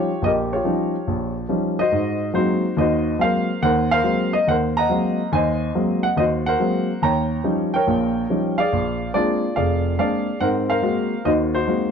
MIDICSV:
0, 0, Header, 1, 2, 480
1, 0, Start_track
1, 0, Tempo, 424328
1, 249, Time_signature, 4, 2, 24, 8
1, 13476, End_track
2, 0, Start_track
2, 0, Title_t, "Grand piano"
2, 0, Program_c, 0, 0
2, 0, Note_on_c, 0, 61, 41
2, 0, Note_on_c, 0, 63, 47
2, 0, Note_on_c, 0, 65, 52
2, 0, Note_on_c, 0, 67, 53
2, 0, Note_on_c, 0, 73, 75
2, 114, Note_off_c, 0, 61, 0
2, 115, Note_off_c, 0, 63, 0
2, 248, Note_on_c, 0, 34, 55
2, 271, Note_off_c, 0, 73, 0
2, 272, Note_on_c, 0, 75, 82
2, 281, Note_off_c, 0, 67, 0
2, 292, Note_on_c, 0, 70, 52
2, 298, Note_on_c, 0, 67, 56
2, 342, Note_off_c, 0, 75, 0
2, 598, Note_on_c, 0, 73, 65
2, 600, Note_off_c, 0, 65, 0
2, 601, Note_off_c, 0, 67, 0
2, 617, Note_on_c, 0, 65, 47
2, 618, Note_on_c, 0, 67, 48
2, 667, Note_off_c, 0, 34, 0
2, 729, Note_on_c, 0, 53, 43
2, 730, Note_on_c, 0, 55, 38
2, 736, Note_on_c, 0, 63, 50
2, 737, Note_on_c, 0, 61, 43
2, 1069, Note_off_c, 0, 53, 0
2, 1070, Note_off_c, 0, 55, 0
2, 1073, Note_off_c, 0, 61, 0
2, 1073, Note_off_c, 0, 63, 0
2, 1187, Note_off_c, 0, 70, 0
2, 1214, Note_on_c, 0, 34, 54
2, 1502, Note_off_c, 0, 73, 0
2, 1512, Note_off_c, 0, 65, 0
2, 1512, Note_off_c, 0, 67, 0
2, 1630, Note_off_c, 0, 34, 0
2, 1682, Note_on_c, 0, 53, 44
2, 1689, Note_on_c, 0, 55, 42
2, 1691, Note_on_c, 0, 61, 41
2, 1695, Note_on_c, 0, 63, 47
2, 2026, Note_off_c, 0, 53, 0
2, 2027, Note_on_c, 0, 75, 88
2, 2030, Note_off_c, 0, 55, 0
2, 2031, Note_off_c, 0, 61, 0
2, 2033, Note_off_c, 0, 63, 0
2, 2048, Note_on_c, 0, 72, 57
2, 2051, Note_on_c, 0, 66, 57
2, 2172, Note_on_c, 0, 44, 58
2, 2590, Note_off_c, 0, 44, 0
2, 2614, Note_off_c, 0, 75, 0
2, 2639, Note_off_c, 0, 72, 0
2, 2642, Note_on_c, 0, 54, 43
2, 2642, Note_on_c, 0, 56, 44
2, 2645, Note_on_c, 0, 58, 40
2, 2653, Note_on_c, 0, 60, 50
2, 2655, Note_on_c, 0, 72, 77
2, 2664, Note_off_c, 0, 66, 0
2, 2676, Note_on_c, 0, 63, 54
2, 2681, Note_on_c, 0, 66, 57
2, 2987, Note_off_c, 0, 54, 0
2, 2987, Note_off_c, 0, 56, 0
2, 2989, Note_off_c, 0, 58, 0
2, 2992, Note_off_c, 0, 60, 0
2, 3101, Note_off_c, 0, 72, 0
2, 3128, Note_on_c, 0, 51, 55
2, 3129, Note_on_c, 0, 39, 62
2, 3148, Note_on_c, 0, 75, 72
2, 3156, Note_off_c, 0, 66, 0
2, 3173, Note_on_c, 0, 66, 57
2, 3173, Note_on_c, 0, 72, 52
2, 3548, Note_off_c, 0, 51, 0
2, 3549, Note_off_c, 0, 39, 0
2, 3580, Note_off_c, 0, 63, 0
2, 3588, Note_off_c, 0, 75, 0
2, 3608, Note_on_c, 0, 54, 43
2, 3610, Note_on_c, 0, 56, 40
2, 3613, Note_on_c, 0, 58, 41
2, 3616, Note_on_c, 0, 60, 45
2, 3634, Note_on_c, 0, 77, 83
2, 3639, Note_off_c, 0, 72, 0
2, 3648, Note_on_c, 0, 70, 54
2, 3656, Note_on_c, 0, 72, 58
2, 3950, Note_off_c, 0, 54, 0
2, 3951, Note_off_c, 0, 56, 0
2, 3953, Note_off_c, 0, 58, 0
2, 3954, Note_off_c, 0, 60, 0
2, 4069, Note_off_c, 0, 66, 0
2, 4071, Note_off_c, 0, 77, 0
2, 4097, Note_on_c, 0, 39, 60
2, 4101, Note_on_c, 0, 78, 88
2, 4105, Note_off_c, 0, 70, 0
2, 4105, Note_off_c, 0, 72, 0
2, 4122, Note_on_c, 0, 70, 61
2, 4122, Note_on_c, 0, 72, 61
2, 4428, Note_on_c, 0, 77, 95
2, 4431, Note_off_c, 0, 72, 0
2, 4431, Note_off_c, 0, 78, 0
2, 4438, Note_off_c, 0, 70, 0
2, 4448, Note_on_c, 0, 72, 64
2, 4455, Note_on_c, 0, 70, 64
2, 4513, Note_off_c, 0, 39, 0
2, 4566, Note_on_c, 0, 54, 47
2, 4572, Note_on_c, 0, 56, 46
2, 4572, Note_on_c, 0, 58, 41
2, 4575, Note_on_c, 0, 60, 52
2, 4901, Note_on_c, 0, 75, 82
2, 4909, Note_off_c, 0, 54, 0
2, 4912, Note_off_c, 0, 56, 0
2, 4912, Note_off_c, 0, 58, 0
2, 4914, Note_off_c, 0, 60, 0
2, 4917, Note_off_c, 0, 77, 0
2, 5059, Note_on_c, 0, 39, 58
2, 5061, Note_off_c, 0, 75, 0
2, 5073, Note_on_c, 0, 78, 83
2, 5074, Note_off_c, 0, 70, 0
2, 5077, Note_off_c, 0, 72, 0
2, 5091, Note_on_c, 0, 70, 57
2, 5094, Note_on_c, 0, 72, 59
2, 5144, Note_off_c, 0, 78, 0
2, 5395, Note_on_c, 0, 82, 86
2, 5412, Note_on_c, 0, 75, 66
2, 5418, Note_on_c, 0, 78, 64
2, 5474, Note_off_c, 0, 39, 0
2, 5533, Note_on_c, 0, 54, 43
2, 5541, Note_on_c, 0, 56, 38
2, 5546, Note_on_c, 0, 58, 43
2, 5546, Note_on_c, 0, 60, 46
2, 5873, Note_off_c, 0, 54, 0
2, 5877, Note_off_c, 0, 56, 0
2, 5879, Note_off_c, 0, 58, 0
2, 5879, Note_off_c, 0, 60, 0
2, 5979, Note_off_c, 0, 82, 0
2, 5987, Note_off_c, 0, 70, 0
2, 5989, Note_off_c, 0, 72, 0
2, 6018, Note_on_c, 0, 39, 64
2, 6027, Note_on_c, 0, 80, 85
2, 6032, Note_off_c, 0, 75, 0
2, 6048, Note_on_c, 0, 72, 61
2, 6049, Note_on_c, 0, 75, 64
2, 6313, Note_off_c, 0, 78, 0
2, 6433, Note_off_c, 0, 39, 0
2, 6467, Note_off_c, 0, 80, 0
2, 6506, Note_on_c, 0, 54, 45
2, 6507, Note_on_c, 0, 58, 44
2, 6508, Note_on_c, 0, 56, 44
2, 6510, Note_on_c, 0, 60, 48
2, 6823, Note_on_c, 0, 78, 84
2, 6839, Note_off_c, 0, 54, 0
2, 6840, Note_off_c, 0, 56, 0
2, 6840, Note_off_c, 0, 58, 0
2, 6841, Note_off_c, 0, 60, 0
2, 6879, Note_off_c, 0, 78, 0
2, 6945, Note_off_c, 0, 72, 0
2, 6946, Note_off_c, 0, 75, 0
2, 6972, Note_on_c, 0, 39, 60
2, 6984, Note_on_c, 0, 75, 84
2, 7011, Note_on_c, 0, 66, 57
2, 7011, Note_on_c, 0, 72, 55
2, 7056, Note_off_c, 0, 75, 0
2, 7312, Note_on_c, 0, 78, 89
2, 7318, Note_off_c, 0, 72, 0
2, 7332, Note_on_c, 0, 70, 59
2, 7335, Note_on_c, 0, 72, 65
2, 7390, Note_off_c, 0, 39, 0
2, 7461, Note_on_c, 0, 54, 43
2, 7464, Note_on_c, 0, 56, 43
2, 7467, Note_on_c, 0, 58, 41
2, 7468, Note_on_c, 0, 60, 47
2, 7796, Note_off_c, 0, 54, 0
2, 7797, Note_off_c, 0, 56, 0
2, 7799, Note_off_c, 0, 58, 0
2, 7800, Note_off_c, 0, 60, 0
2, 7906, Note_off_c, 0, 66, 0
2, 7907, Note_off_c, 0, 70, 0
2, 7909, Note_off_c, 0, 72, 0
2, 7940, Note_on_c, 0, 39, 57
2, 7951, Note_on_c, 0, 82, 83
2, 7959, Note_off_c, 0, 78, 0
2, 7967, Note_on_c, 0, 79, 57
2, 7969, Note_on_c, 0, 73, 61
2, 8354, Note_off_c, 0, 39, 0
2, 8389, Note_off_c, 0, 82, 0
2, 8413, Note_on_c, 0, 53, 46
2, 8420, Note_on_c, 0, 55, 42
2, 8420, Note_on_c, 0, 61, 42
2, 8423, Note_on_c, 0, 63, 54
2, 8735, Note_off_c, 0, 79, 0
2, 8751, Note_off_c, 0, 53, 0
2, 8752, Note_on_c, 0, 79, 86
2, 8755, Note_off_c, 0, 55, 0
2, 8755, Note_off_c, 0, 61, 0
2, 8757, Note_off_c, 0, 63, 0
2, 8758, Note_off_c, 0, 73, 0
2, 8774, Note_on_c, 0, 70, 61
2, 8774, Note_on_c, 0, 73, 65
2, 8901, Note_on_c, 0, 46, 59
2, 8902, Note_on_c, 0, 34, 61
2, 9313, Note_off_c, 0, 46, 0
2, 9314, Note_off_c, 0, 34, 0
2, 9383, Note_on_c, 0, 53, 40
2, 9387, Note_on_c, 0, 55, 40
2, 9391, Note_on_c, 0, 61, 40
2, 9396, Note_on_c, 0, 63, 46
2, 9668, Note_off_c, 0, 70, 0
2, 9668, Note_off_c, 0, 73, 0
2, 9704, Note_on_c, 0, 77, 80
2, 9716, Note_off_c, 0, 53, 0
2, 9718, Note_off_c, 0, 55, 0
2, 9720, Note_off_c, 0, 61, 0
2, 9721, Note_on_c, 0, 68, 62
2, 9723, Note_off_c, 0, 63, 0
2, 9726, Note_on_c, 0, 74, 58
2, 9731, Note_off_c, 0, 79, 0
2, 9870, Note_on_c, 0, 34, 57
2, 10278, Note_off_c, 0, 34, 0
2, 10291, Note_off_c, 0, 77, 0
2, 10323, Note_off_c, 0, 74, 0
2, 10340, Note_on_c, 0, 74, 78
2, 10343, Note_on_c, 0, 56, 45
2, 10344, Note_on_c, 0, 58, 43
2, 10345, Note_off_c, 0, 68, 0
2, 10347, Note_on_c, 0, 60, 39
2, 10348, Note_on_c, 0, 62, 52
2, 10362, Note_on_c, 0, 68, 58
2, 10364, Note_on_c, 0, 65, 58
2, 10675, Note_off_c, 0, 56, 0
2, 10676, Note_off_c, 0, 58, 0
2, 10677, Note_off_c, 0, 60, 0
2, 10678, Note_off_c, 0, 62, 0
2, 10809, Note_off_c, 0, 68, 0
2, 10809, Note_off_c, 0, 74, 0
2, 10813, Note_on_c, 0, 77, 72
2, 10825, Note_on_c, 0, 29, 60
2, 10826, Note_on_c, 0, 68, 52
2, 10826, Note_on_c, 0, 74, 54
2, 11234, Note_off_c, 0, 29, 0
2, 11260, Note_off_c, 0, 65, 0
2, 11283, Note_off_c, 0, 77, 0
2, 11290, Note_on_c, 0, 58, 38
2, 11291, Note_on_c, 0, 56, 45
2, 11294, Note_off_c, 0, 68, 0
2, 11295, Note_off_c, 0, 74, 0
2, 11298, Note_on_c, 0, 60, 38
2, 11300, Note_on_c, 0, 77, 77
2, 11301, Note_on_c, 0, 62, 49
2, 11311, Note_on_c, 0, 68, 58
2, 11312, Note_on_c, 0, 74, 59
2, 11628, Note_off_c, 0, 56, 0
2, 11628, Note_off_c, 0, 58, 0
2, 11632, Note_off_c, 0, 60, 0
2, 11633, Note_off_c, 0, 62, 0
2, 11746, Note_off_c, 0, 68, 0
2, 11747, Note_off_c, 0, 74, 0
2, 11768, Note_on_c, 0, 60, 61
2, 11770, Note_on_c, 0, 78, 84
2, 11771, Note_on_c, 0, 44, 58
2, 11788, Note_off_c, 0, 77, 0
2, 11788, Note_on_c, 0, 70, 57
2, 11790, Note_on_c, 0, 72, 58
2, 11843, Note_off_c, 0, 78, 0
2, 12095, Note_off_c, 0, 72, 0
2, 12098, Note_off_c, 0, 70, 0
2, 12099, Note_on_c, 0, 77, 81
2, 12112, Note_on_c, 0, 72, 56
2, 12115, Note_on_c, 0, 70, 60
2, 12184, Note_off_c, 0, 60, 0
2, 12186, Note_off_c, 0, 44, 0
2, 12240, Note_on_c, 0, 56, 48
2, 12248, Note_on_c, 0, 60, 44
2, 12249, Note_on_c, 0, 58, 44
2, 12251, Note_on_c, 0, 66, 50
2, 12582, Note_off_c, 0, 56, 0
2, 12586, Note_off_c, 0, 58, 0
2, 12586, Note_off_c, 0, 60, 0
2, 12587, Note_off_c, 0, 66, 0
2, 12728, Note_on_c, 0, 51, 58
2, 12728, Note_on_c, 0, 75, 76
2, 12729, Note_on_c, 0, 39, 60
2, 12731, Note_off_c, 0, 72, 0
2, 12742, Note_on_c, 0, 66, 57
2, 12747, Note_on_c, 0, 72, 52
2, 12749, Note_off_c, 0, 77, 0
2, 12801, Note_off_c, 0, 75, 0
2, 13015, Note_off_c, 0, 70, 0
2, 13043, Note_off_c, 0, 72, 0
2, 13058, Note_off_c, 0, 66, 0
2, 13060, Note_on_c, 0, 72, 77
2, 13075, Note_on_c, 0, 66, 58
2, 13077, Note_on_c, 0, 63, 56
2, 13144, Note_off_c, 0, 39, 0
2, 13144, Note_off_c, 0, 51, 0
2, 13195, Note_off_c, 0, 66, 0
2, 13208, Note_on_c, 0, 56, 44
2, 13209, Note_on_c, 0, 58, 44
2, 13212, Note_on_c, 0, 60, 42
2, 13212, Note_on_c, 0, 66, 50
2, 13476, Note_off_c, 0, 56, 0
2, 13476, Note_off_c, 0, 58, 0
2, 13476, Note_off_c, 0, 60, 0
2, 13476, Note_off_c, 0, 63, 0
2, 13476, Note_off_c, 0, 66, 0
2, 13476, Note_off_c, 0, 72, 0
2, 13476, End_track
0, 0, End_of_file